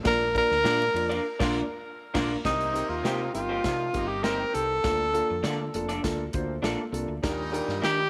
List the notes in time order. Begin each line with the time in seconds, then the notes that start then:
0.03 A#1 A#2 A#3 D4 F4 A#4 D5, kick, snare, ride
0.34 A#3 D4 F4 A#4 D5, kick, ride
0.38 A#4
0.51 D2, snare
0.64 A#2 A#3 D4 F4 A#4 D5, snare, ride
0.82 ride
0.94 F2 A#3 D4 F4 A#4 D5, ride
1.09 D4 F4 A#4 D5, ride
1.39 A#1 D3 A#3 D4 F4 A#4 D5, kick, snare, crash
2.14 A#1 D3 A#3 D4 F4 A#4 D5, kick, snare, crash
2.44 C2 C3 A#3 C4 D#4 G4 A#4, kick, snare, closed hi-hat
2.61 closed hi-hat
2.73 C4 D#4 G4 A#4, closed hi-hat
2.89 D#2 F4
3.03 C3 A#3 C4 D#4 G4 A#4 C5, snare, closed hi-hat
3.33 G1 D#3 C4 D#4 F4 G4 A#4, closed hi-hat
3.49 A#3 D#4 G4 C5
3.63 C3 F3 C4 D4 D#4 F4 G4 A#4, kick, snare, closed hi-hat
3.93 G1 C3 A#3 C4 D#4 G4 A#4, kick, closed hi-hat
4.08 G4
4.22 D#3 A#3 C4 D#4 G4 A#4 C5, snare, closed hi-hat
4.53 C2 C4 D#4 G4 A4 A#4, closed hi-hat
4.83 D2 D3 A#3 D4 F4 A4, kick, snare, closed hi-hat
5.13 A#3 D4 F4 A4, closed hi-hat
5.30 F2
5.43 D3 A#3 D4 F4 A4 D5, snare, closed hi-hat
5.74 F1 A#3 D4 F4 A4, closed hi-hat
5.89 D4 F4 A4 D5, closed hi-hat
6.03 D2 A#3 D4 F4 A4, kick, snare, closed hi-hat
6.33 D2 A#3 D4 F4 C5, kick, closed hi-hat
6.62 A#1 A#3 D4 F4 A4 D5, snare, closed hi-hat
6.92 C2 A#3 D4 F4 A4, closed hi-hat
7.08 D2
7.23 D#2 A#2 D#3 G3 D4 D#4 G4 A#4, kick, snare, closed hi-hat
7.52 D4 D#4 G4 A#4, closed hi-hat
7.68 G2, snare
7.82 D#3 D4 D#4 G4 A#4 D5, snare, closed hi-hat